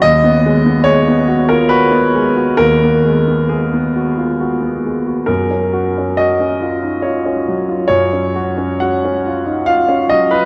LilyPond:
\new Staff \with { instrumentName = "Grand piano" } { \time 3/4 \key ces \lydian \tempo 4 = 69 << { dis''4 des''8. bes'16 b'4 | bes'4 gis'4 r4 | bes'4 ees''4 des''4 | des''4 ges''4 f''8 ees''16 ces''16 | } \\ { dis,16 b16 gis16 b16 gis16 b16 fis'16 f'16 fis'16 b16 gis16 fis'16 | dis,16 b16 gis16 b16 gis16 b16 fis'16 f'16 fis'16 b16 gis16 fis'16 | ges,16 des'16 ges'16 des'16 ges'16 des'16 f'16 ees'16 f'16 des'16 ges16 f'16 | ges,16 des'16 ges'16 des'16 ges'16 des'16 f'16 ees'16 f'16 des'16 ges16 f'16 | } >> }